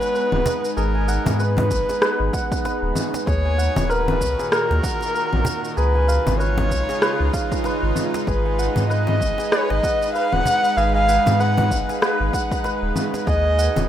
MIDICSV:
0, 0, Header, 1, 7, 480
1, 0, Start_track
1, 0, Tempo, 625000
1, 591, Time_signature, 4, 2, 24, 8
1, 10664, End_track
2, 0, Start_track
2, 0, Title_t, "Kamancheh"
2, 0, Program_c, 0, 110
2, 0, Note_on_c, 0, 71, 114
2, 590, Note_on_c, 0, 70, 94
2, 601, Note_off_c, 0, 71, 0
2, 1076, Note_on_c, 0, 71, 97
2, 1087, Note_off_c, 0, 70, 0
2, 2034, Note_off_c, 0, 71, 0
2, 2509, Note_on_c, 0, 73, 111
2, 2991, Note_on_c, 0, 71, 114
2, 3003, Note_off_c, 0, 73, 0
2, 3475, Note_on_c, 0, 70, 108
2, 3486, Note_off_c, 0, 71, 0
2, 4431, Note_on_c, 0, 71, 98
2, 4442, Note_off_c, 0, 70, 0
2, 4909, Note_off_c, 0, 71, 0
2, 4913, Note_on_c, 0, 73, 106
2, 5842, Note_off_c, 0, 73, 0
2, 6348, Note_on_c, 0, 71, 92
2, 6799, Note_off_c, 0, 71, 0
2, 6828, Note_on_c, 0, 75, 104
2, 7309, Note_on_c, 0, 73, 100
2, 7321, Note_off_c, 0, 75, 0
2, 7450, Note_on_c, 0, 75, 105
2, 7461, Note_off_c, 0, 73, 0
2, 7787, Note_off_c, 0, 75, 0
2, 7791, Note_on_c, 0, 77, 104
2, 7930, Note_on_c, 0, 78, 122
2, 7941, Note_off_c, 0, 77, 0
2, 8269, Note_on_c, 0, 77, 110
2, 8281, Note_off_c, 0, 78, 0
2, 8404, Note_off_c, 0, 77, 0
2, 8409, Note_on_c, 0, 77, 119
2, 8755, Note_on_c, 0, 78, 107
2, 8767, Note_off_c, 0, 77, 0
2, 9233, Note_off_c, 0, 78, 0
2, 10192, Note_on_c, 0, 75, 117
2, 10641, Note_off_c, 0, 75, 0
2, 10664, End_track
3, 0, Start_track
3, 0, Title_t, "Santur"
3, 0, Program_c, 1, 15
3, 0, Note_on_c, 1, 68, 72
3, 0, Note_on_c, 1, 71, 100
3, 0, Note_on_c, 1, 78, 75
3, 0, Note_on_c, 1, 80, 73
3, 108, Note_off_c, 1, 71, 0
3, 111, Note_on_c, 1, 71, 82
3, 345, Note_off_c, 1, 80, 0
3, 586, Note_off_c, 1, 68, 0
3, 589, Note_on_c, 1, 68, 88
3, 729, Note_on_c, 1, 80, 76
3, 826, Note_off_c, 1, 78, 0
3, 829, Note_on_c, 1, 78, 81
3, 1068, Note_off_c, 1, 71, 0
3, 1071, Note_on_c, 1, 71, 85
3, 1448, Note_off_c, 1, 68, 0
3, 1451, Note_on_c, 1, 68, 71
3, 1549, Note_off_c, 1, 71, 0
3, 1552, Note_on_c, 1, 71, 107
3, 1785, Note_off_c, 1, 78, 0
3, 1788, Note_on_c, 1, 78, 79
3, 2028, Note_off_c, 1, 71, 0
3, 2031, Note_on_c, 1, 71, 84
3, 2265, Note_off_c, 1, 80, 0
3, 2508, Note_off_c, 1, 68, 0
3, 2511, Note_on_c, 1, 68, 92
3, 2651, Note_on_c, 1, 80, 74
3, 2746, Note_off_c, 1, 78, 0
3, 2749, Note_on_c, 1, 78, 74
3, 2989, Note_on_c, 1, 70, 85
3, 3035, Note_off_c, 1, 71, 0
3, 3366, Note_off_c, 1, 68, 0
3, 3369, Note_on_c, 1, 68, 75
3, 3468, Note_off_c, 1, 70, 0
3, 3471, Note_on_c, 1, 70, 108
3, 3706, Note_off_c, 1, 78, 0
3, 3709, Note_on_c, 1, 78, 75
3, 3947, Note_off_c, 1, 70, 0
3, 3950, Note_on_c, 1, 70, 82
3, 4187, Note_off_c, 1, 80, 0
3, 4427, Note_off_c, 1, 68, 0
3, 4430, Note_on_c, 1, 68, 89
3, 4569, Note_on_c, 1, 80, 77
3, 4669, Note_on_c, 1, 77, 77
3, 4715, Note_off_c, 1, 78, 0
3, 4909, Note_on_c, 1, 71, 83
3, 4955, Note_off_c, 1, 70, 0
3, 5288, Note_off_c, 1, 68, 0
3, 5291, Note_on_c, 1, 68, 71
3, 5390, Note_off_c, 1, 71, 0
3, 5393, Note_on_c, 1, 71, 110
3, 5628, Note_off_c, 1, 77, 0
3, 5632, Note_on_c, 1, 77, 81
3, 5872, Note_off_c, 1, 71, 0
3, 5875, Note_on_c, 1, 71, 85
3, 6105, Note_off_c, 1, 80, 0
3, 6351, Note_off_c, 1, 68, 0
3, 6354, Note_on_c, 1, 68, 85
3, 6492, Note_on_c, 1, 80, 75
3, 6595, Note_on_c, 1, 78, 74
3, 6641, Note_off_c, 1, 77, 0
3, 6831, Note_off_c, 1, 71, 0
3, 6834, Note_on_c, 1, 71, 87
3, 7208, Note_off_c, 1, 68, 0
3, 7211, Note_on_c, 1, 68, 69
3, 7310, Note_off_c, 1, 71, 0
3, 7314, Note_on_c, 1, 71, 104
3, 7552, Note_off_c, 1, 78, 0
3, 7555, Note_on_c, 1, 78, 76
3, 7790, Note_off_c, 1, 71, 0
3, 7793, Note_on_c, 1, 71, 87
3, 8028, Note_off_c, 1, 80, 0
3, 8271, Note_off_c, 1, 68, 0
3, 8274, Note_on_c, 1, 68, 94
3, 8413, Note_on_c, 1, 80, 74
3, 8507, Note_off_c, 1, 78, 0
3, 8511, Note_on_c, 1, 78, 79
3, 8750, Note_off_c, 1, 71, 0
3, 8753, Note_on_c, 1, 71, 86
3, 9127, Note_off_c, 1, 68, 0
3, 9130, Note_on_c, 1, 68, 70
3, 9226, Note_off_c, 1, 71, 0
3, 9229, Note_on_c, 1, 71, 110
3, 9468, Note_off_c, 1, 78, 0
3, 9471, Note_on_c, 1, 78, 79
3, 9708, Note_off_c, 1, 71, 0
3, 9711, Note_on_c, 1, 71, 89
3, 9949, Note_off_c, 1, 80, 0
3, 10186, Note_off_c, 1, 68, 0
3, 10189, Note_on_c, 1, 68, 89
3, 10331, Note_on_c, 1, 80, 73
3, 10429, Note_off_c, 1, 78, 0
3, 10432, Note_on_c, 1, 78, 78
3, 10664, Note_off_c, 1, 68, 0
3, 10664, Note_off_c, 1, 71, 0
3, 10664, Note_off_c, 1, 78, 0
3, 10664, Note_off_c, 1, 80, 0
3, 10664, End_track
4, 0, Start_track
4, 0, Title_t, "Synth drone"
4, 0, Program_c, 2, 95
4, 0, Note_on_c, 2, 56, 69
4, 0, Note_on_c, 2, 59, 89
4, 0, Note_on_c, 2, 63, 72
4, 2476, Note_off_c, 2, 56, 0
4, 2476, Note_off_c, 2, 63, 0
4, 2479, Note_off_c, 2, 59, 0
4, 2507, Note_on_c, 2, 51, 83
4, 2508, Note_on_c, 2, 46, 68
4, 2508, Note_on_c, 2, 66, 89
4, 4410, Note_off_c, 2, 51, 0
4, 4410, Note_off_c, 2, 66, 0
4, 4411, Note_off_c, 2, 46, 0
4, 4428, Note_on_c, 2, 56, 72
4, 4428, Note_on_c, 2, 63, 72
4, 4428, Note_on_c, 2, 65, 82
4, 4429, Note_on_c, 2, 49, 80
4, 6330, Note_off_c, 2, 65, 0
4, 6331, Note_off_c, 2, 49, 0
4, 6347, Note_on_c, 2, 71, 87
4, 10158, Note_off_c, 2, 71, 0
4, 10159, Note_off_c, 2, 56, 0
4, 10159, Note_off_c, 2, 63, 0
4, 10192, Note_on_c, 2, 66, 85
4, 10195, Note_on_c, 2, 46, 74
4, 10195, Note_on_c, 2, 51, 74
4, 10664, Note_off_c, 2, 46, 0
4, 10664, Note_off_c, 2, 51, 0
4, 10664, Note_off_c, 2, 66, 0
4, 10664, End_track
5, 0, Start_track
5, 0, Title_t, "Sub bass"
5, 0, Program_c, 3, 38
5, 247, Note_on_c, 3, 27, 108
5, 322, Note_off_c, 3, 27, 0
5, 592, Note_on_c, 3, 32, 100
5, 911, Note_off_c, 3, 32, 0
5, 970, Note_on_c, 3, 44, 80
5, 1313, Note_on_c, 3, 30, 91
5, 1324, Note_off_c, 3, 44, 0
5, 1414, Note_off_c, 3, 30, 0
5, 1687, Note_on_c, 3, 32, 91
5, 1763, Note_off_c, 3, 32, 0
5, 2169, Note_on_c, 3, 27, 111
5, 2243, Note_off_c, 3, 27, 0
5, 2514, Note_on_c, 3, 39, 100
5, 2832, Note_off_c, 3, 39, 0
5, 2891, Note_on_c, 3, 27, 76
5, 3234, Note_on_c, 3, 37, 88
5, 3246, Note_off_c, 3, 27, 0
5, 3334, Note_off_c, 3, 37, 0
5, 3614, Note_on_c, 3, 39, 93
5, 3686, Note_off_c, 3, 39, 0
5, 4093, Note_on_c, 3, 34, 112
5, 4165, Note_off_c, 3, 34, 0
5, 4434, Note_on_c, 3, 37, 103
5, 4752, Note_off_c, 3, 37, 0
5, 4813, Note_on_c, 3, 32, 78
5, 5154, Note_on_c, 3, 35, 91
5, 5165, Note_off_c, 3, 32, 0
5, 5254, Note_off_c, 3, 35, 0
5, 5530, Note_on_c, 3, 37, 94
5, 5604, Note_off_c, 3, 37, 0
5, 6011, Note_on_c, 3, 32, 111
5, 6084, Note_off_c, 3, 32, 0
5, 6354, Note_on_c, 3, 32, 96
5, 6672, Note_off_c, 3, 32, 0
5, 6731, Note_on_c, 3, 44, 80
5, 7072, Note_on_c, 3, 30, 89
5, 7084, Note_off_c, 3, 44, 0
5, 7174, Note_off_c, 3, 30, 0
5, 7452, Note_on_c, 3, 32, 90
5, 7525, Note_off_c, 3, 32, 0
5, 7930, Note_on_c, 3, 27, 107
5, 8004, Note_off_c, 3, 27, 0
5, 8271, Note_on_c, 3, 32, 107
5, 8590, Note_off_c, 3, 32, 0
5, 8651, Note_on_c, 3, 44, 74
5, 8991, Note_on_c, 3, 30, 89
5, 9003, Note_off_c, 3, 44, 0
5, 9093, Note_off_c, 3, 30, 0
5, 9371, Note_on_c, 3, 32, 91
5, 9444, Note_off_c, 3, 32, 0
5, 9848, Note_on_c, 3, 27, 104
5, 9923, Note_off_c, 3, 27, 0
5, 10193, Note_on_c, 3, 39, 106
5, 10511, Note_off_c, 3, 39, 0
5, 10571, Note_on_c, 3, 27, 76
5, 10664, Note_off_c, 3, 27, 0
5, 10664, End_track
6, 0, Start_track
6, 0, Title_t, "Cajon"
6, 10, Note_on_c, 9, 38, 40
6, 86, Note_off_c, 9, 38, 0
6, 351, Note_on_c, 9, 36, 92
6, 428, Note_off_c, 9, 36, 0
6, 971, Note_on_c, 9, 36, 93
6, 1047, Note_off_c, 9, 36, 0
6, 1211, Note_on_c, 9, 38, 72
6, 1213, Note_on_c, 9, 36, 94
6, 1288, Note_off_c, 9, 38, 0
6, 1290, Note_off_c, 9, 36, 0
6, 1455, Note_on_c, 9, 38, 69
6, 1532, Note_off_c, 9, 38, 0
6, 2037, Note_on_c, 9, 38, 73
6, 2114, Note_off_c, 9, 38, 0
6, 2272, Note_on_c, 9, 38, 39
6, 2348, Note_off_c, 9, 38, 0
6, 2411, Note_on_c, 9, 38, 80
6, 2488, Note_off_c, 9, 38, 0
6, 2890, Note_on_c, 9, 36, 92
6, 2967, Note_off_c, 9, 36, 0
6, 3134, Note_on_c, 9, 38, 68
6, 3211, Note_off_c, 9, 38, 0
6, 3375, Note_on_c, 9, 38, 67
6, 3452, Note_off_c, 9, 38, 0
6, 3616, Note_on_c, 9, 38, 56
6, 3693, Note_off_c, 9, 38, 0
6, 3846, Note_on_c, 9, 38, 42
6, 3923, Note_off_c, 9, 38, 0
6, 4184, Note_on_c, 9, 36, 99
6, 4260, Note_off_c, 9, 36, 0
6, 4813, Note_on_c, 9, 36, 95
6, 4890, Note_off_c, 9, 36, 0
6, 5051, Note_on_c, 9, 36, 82
6, 5052, Note_on_c, 9, 38, 66
6, 5128, Note_off_c, 9, 36, 0
6, 5128, Note_off_c, 9, 38, 0
6, 5292, Note_on_c, 9, 38, 66
6, 5369, Note_off_c, 9, 38, 0
6, 5867, Note_on_c, 9, 38, 71
6, 5944, Note_off_c, 9, 38, 0
6, 6112, Note_on_c, 9, 38, 35
6, 6189, Note_off_c, 9, 38, 0
6, 6254, Note_on_c, 9, 38, 82
6, 6331, Note_off_c, 9, 38, 0
6, 6726, Note_on_c, 9, 36, 78
6, 6803, Note_off_c, 9, 36, 0
6, 6966, Note_on_c, 9, 38, 62
6, 7043, Note_off_c, 9, 38, 0
6, 7204, Note_on_c, 9, 38, 64
6, 7281, Note_off_c, 9, 38, 0
6, 7452, Note_on_c, 9, 38, 59
6, 7529, Note_off_c, 9, 38, 0
6, 7692, Note_on_c, 9, 38, 36
6, 7769, Note_off_c, 9, 38, 0
6, 8030, Note_on_c, 9, 36, 90
6, 8106, Note_off_c, 9, 36, 0
6, 8654, Note_on_c, 9, 36, 85
6, 8730, Note_off_c, 9, 36, 0
6, 8888, Note_on_c, 9, 38, 60
6, 8893, Note_on_c, 9, 36, 81
6, 8965, Note_off_c, 9, 38, 0
6, 8970, Note_off_c, 9, 36, 0
6, 9134, Note_on_c, 9, 38, 64
6, 9211, Note_off_c, 9, 38, 0
6, 9709, Note_on_c, 9, 38, 66
6, 9786, Note_off_c, 9, 38, 0
6, 9952, Note_on_c, 9, 38, 33
6, 10029, Note_off_c, 9, 38, 0
6, 10091, Note_on_c, 9, 38, 66
6, 10168, Note_off_c, 9, 38, 0
6, 10572, Note_on_c, 9, 36, 77
6, 10649, Note_off_c, 9, 36, 0
6, 10664, End_track
7, 0, Start_track
7, 0, Title_t, "Drums"
7, 17, Note_on_c, 9, 82, 43
7, 94, Note_off_c, 9, 82, 0
7, 118, Note_on_c, 9, 82, 33
7, 195, Note_off_c, 9, 82, 0
7, 248, Note_on_c, 9, 64, 90
7, 324, Note_off_c, 9, 64, 0
7, 355, Note_on_c, 9, 82, 80
7, 432, Note_off_c, 9, 82, 0
7, 496, Note_on_c, 9, 82, 45
7, 572, Note_off_c, 9, 82, 0
7, 595, Note_on_c, 9, 82, 34
7, 672, Note_off_c, 9, 82, 0
7, 833, Note_on_c, 9, 82, 78
7, 910, Note_off_c, 9, 82, 0
7, 966, Note_on_c, 9, 64, 76
7, 972, Note_on_c, 9, 82, 46
7, 1043, Note_off_c, 9, 64, 0
7, 1049, Note_off_c, 9, 82, 0
7, 1073, Note_on_c, 9, 82, 36
7, 1149, Note_off_c, 9, 82, 0
7, 1204, Note_on_c, 9, 64, 82
7, 1281, Note_off_c, 9, 64, 0
7, 1312, Note_on_c, 9, 36, 64
7, 1312, Note_on_c, 9, 82, 82
7, 1389, Note_off_c, 9, 36, 0
7, 1389, Note_off_c, 9, 82, 0
7, 1453, Note_on_c, 9, 82, 47
7, 1530, Note_off_c, 9, 82, 0
7, 1550, Note_on_c, 9, 37, 83
7, 1556, Note_on_c, 9, 82, 34
7, 1627, Note_off_c, 9, 37, 0
7, 1632, Note_off_c, 9, 82, 0
7, 1793, Note_on_c, 9, 36, 99
7, 1796, Note_on_c, 9, 82, 81
7, 1870, Note_off_c, 9, 36, 0
7, 1873, Note_off_c, 9, 82, 0
7, 1933, Note_on_c, 9, 36, 110
7, 1935, Note_on_c, 9, 82, 49
7, 2009, Note_off_c, 9, 36, 0
7, 2012, Note_off_c, 9, 82, 0
7, 2036, Note_on_c, 9, 82, 34
7, 2113, Note_off_c, 9, 82, 0
7, 2269, Note_on_c, 9, 64, 81
7, 2275, Note_on_c, 9, 82, 81
7, 2346, Note_off_c, 9, 64, 0
7, 2352, Note_off_c, 9, 82, 0
7, 2416, Note_on_c, 9, 82, 49
7, 2493, Note_off_c, 9, 82, 0
7, 2514, Note_on_c, 9, 36, 123
7, 2517, Note_on_c, 9, 82, 34
7, 2590, Note_off_c, 9, 36, 0
7, 2594, Note_off_c, 9, 82, 0
7, 2759, Note_on_c, 9, 82, 80
7, 2836, Note_off_c, 9, 82, 0
7, 2892, Note_on_c, 9, 64, 81
7, 2897, Note_on_c, 9, 82, 48
7, 2968, Note_off_c, 9, 64, 0
7, 2974, Note_off_c, 9, 82, 0
7, 3000, Note_on_c, 9, 82, 36
7, 3076, Note_off_c, 9, 82, 0
7, 3133, Note_on_c, 9, 64, 79
7, 3210, Note_off_c, 9, 64, 0
7, 3233, Note_on_c, 9, 36, 60
7, 3238, Note_on_c, 9, 82, 86
7, 3310, Note_off_c, 9, 36, 0
7, 3314, Note_off_c, 9, 82, 0
7, 3378, Note_on_c, 9, 82, 49
7, 3455, Note_off_c, 9, 82, 0
7, 3472, Note_on_c, 9, 37, 83
7, 3477, Note_on_c, 9, 82, 36
7, 3548, Note_off_c, 9, 37, 0
7, 3554, Note_off_c, 9, 82, 0
7, 3714, Note_on_c, 9, 36, 103
7, 3717, Note_on_c, 9, 82, 87
7, 3790, Note_off_c, 9, 36, 0
7, 3794, Note_off_c, 9, 82, 0
7, 3858, Note_on_c, 9, 82, 49
7, 3935, Note_off_c, 9, 82, 0
7, 3959, Note_on_c, 9, 82, 35
7, 4036, Note_off_c, 9, 82, 0
7, 4091, Note_on_c, 9, 64, 82
7, 4168, Note_off_c, 9, 64, 0
7, 4195, Note_on_c, 9, 82, 87
7, 4272, Note_off_c, 9, 82, 0
7, 4336, Note_on_c, 9, 82, 45
7, 4413, Note_off_c, 9, 82, 0
7, 4435, Note_on_c, 9, 82, 32
7, 4512, Note_off_c, 9, 82, 0
7, 4676, Note_on_c, 9, 82, 85
7, 4753, Note_off_c, 9, 82, 0
7, 4812, Note_on_c, 9, 64, 79
7, 4817, Note_on_c, 9, 82, 49
7, 4888, Note_off_c, 9, 64, 0
7, 4894, Note_off_c, 9, 82, 0
7, 4918, Note_on_c, 9, 82, 35
7, 4995, Note_off_c, 9, 82, 0
7, 5050, Note_on_c, 9, 64, 77
7, 5127, Note_off_c, 9, 64, 0
7, 5153, Note_on_c, 9, 36, 59
7, 5157, Note_on_c, 9, 82, 83
7, 5230, Note_off_c, 9, 36, 0
7, 5234, Note_off_c, 9, 82, 0
7, 5299, Note_on_c, 9, 82, 49
7, 5375, Note_off_c, 9, 82, 0
7, 5391, Note_on_c, 9, 37, 76
7, 5397, Note_on_c, 9, 82, 34
7, 5468, Note_off_c, 9, 37, 0
7, 5474, Note_off_c, 9, 82, 0
7, 5633, Note_on_c, 9, 36, 103
7, 5635, Note_on_c, 9, 82, 82
7, 5710, Note_off_c, 9, 36, 0
7, 5712, Note_off_c, 9, 82, 0
7, 5773, Note_on_c, 9, 36, 105
7, 5775, Note_on_c, 9, 82, 46
7, 5849, Note_off_c, 9, 36, 0
7, 5851, Note_off_c, 9, 82, 0
7, 5876, Note_on_c, 9, 82, 36
7, 5953, Note_off_c, 9, 82, 0
7, 6112, Note_on_c, 9, 64, 77
7, 6117, Note_on_c, 9, 82, 83
7, 6188, Note_off_c, 9, 64, 0
7, 6194, Note_off_c, 9, 82, 0
7, 6257, Note_on_c, 9, 82, 48
7, 6334, Note_off_c, 9, 82, 0
7, 6353, Note_on_c, 9, 36, 114
7, 6359, Note_on_c, 9, 82, 33
7, 6430, Note_off_c, 9, 36, 0
7, 6436, Note_off_c, 9, 82, 0
7, 6598, Note_on_c, 9, 82, 81
7, 6675, Note_off_c, 9, 82, 0
7, 6733, Note_on_c, 9, 64, 75
7, 6738, Note_on_c, 9, 82, 48
7, 6809, Note_off_c, 9, 64, 0
7, 6815, Note_off_c, 9, 82, 0
7, 6842, Note_on_c, 9, 82, 35
7, 6918, Note_off_c, 9, 82, 0
7, 6974, Note_on_c, 9, 64, 73
7, 7051, Note_off_c, 9, 64, 0
7, 7073, Note_on_c, 9, 36, 59
7, 7079, Note_on_c, 9, 82, 80
7, 7149, Note_off_c, 9, 36, 0
7, 7156, Note_off_c, 9, 82, 0
7, 7216, Note_on_c, 9, 82, 48
7, 7293, Note_off_c, 9, 82, 0
7, 7312, Note_on_c, 9, 37, 74
7, 7318, Note_on_c, 9, 82, 32
7, 7389, Note_off_c, 9, 37, 0
7, 7395, Note_off_c, 9, 82, 0
7, 7553, Note_on_c, 9, 36, 101
7, 7557, Note_on_c, 9, 82, 76
7, 7629, Note_off_c, 9, 36, 0
7, 7634, Note_off_c, 9, 82, 0
7, 7698, Note_on_c, 9, 82, 46
7, 7774, Note_off_c, 9, 82, 0
7, 7799, Note_on_c, 9, 82, 34
7, 7876, Note_off_c, 9, 82, 0
7, 7930, Note_on_c, 9, 64, 79
7, 8007, Note_off_c, 9, 64, 0
7, 8037, Note_on_c, 9, 82, 80
7, 8113, Note_off_c, 9, 82, 0
7, 8175, Note_on_c, 9, 82, 44
7, 8252, Note_off_c, 9, 82, 0
7, 8277, Note_on_c, 9, 82, 32
7, 8354, Note_off_c, 9, 82, 0
7, 8516, Note_on_c, 9, 82, 82
7, 8592, Note_off_c, 9, 82, 0
7, 8650, Note_on_c, 9, 64, 82
7, 8656, Note_on_c, 9, 82, 42
7, 8727, Note_off_c, 9, 64, 0
7, 8733, Note_off_c, 9, 82, 0
7, 8759, Note_on_c, 9, 82, 35
7, 8835, Note_off_c, 9, 82, 0
7, 8891, Note_on_c, 9, 64, 78
7, 8967, Note_off_c, 9, 64, 0
7, 8992, Note_on_c, 9, 36, 56
7, 8997, Note_on_c, 9, 82, 74
7, 9069, Note_off_c, 9, 36, 0
7, 9074, Note_off_c, 9, 82, 0
7, 9138, Note_on_c, 9, 82, 43
7, 9215, Note_off_c, 9, 82, 0
7, 9233, Note_on_c, 9, 37, 77
7, 9239, Note_on_c, 9, 82, 33
7, 9310, Note_off_c, 9, 37, 0
7, 9316, Note_off_c, 9, 82, 0
7, 9473, Note_on_c, 9, 36, 92
7, 9479, Note_on_c, 9, 82, 74
7, 9549, Note_off_c, 9, 36, 0
7, 9555, Note_off_c, 9, 82, 0
7, 9611, Note_on_c, 9, 36, 104
7, 9615, Note_on_c, 9, 82, 45
7, 9688, Note_off_c, 9, 36, 0
7, 9692, Note_off_c, 9, 82, 0
7, 9718, Note_on_c, 9, 82, 34
7, 9794, Note_off_c, 9, 82, 0
7, 9951, Note_on_c, 9, 64, 80
7, 9957, Note_on_c, 9, 82, 80
7, 10028, Note_off_c, 9, 64, 0
7, 10033, Note_off_c, 9, 82, 0
7, 10096, Note_on_c, 9, 82, 44
7, 10173, Note_off_c, 9, 82, 0
7, 10192, Note_on_c, 9, 36, 115
7, 10196, Note_on_c, 9, 82, 31
7, 10269, Note_off_c, 9, 36, 0
7, 10273, Note_off_c, 9, 82, 0
7, 10436, Note_on_c, 9, 82, 78
7, 10512, Note_off_c, 9, 82, 0
7, 10570, Note_on_c, 9, 64, 85
7, 10576, Note_on_c, 9, 82, 42
7, 10647, Note_off_c, 9, 64, 0
7, 10652, Note_off_c, 9, 82, 0
7, 10664, End_track
0, 0, End_of_file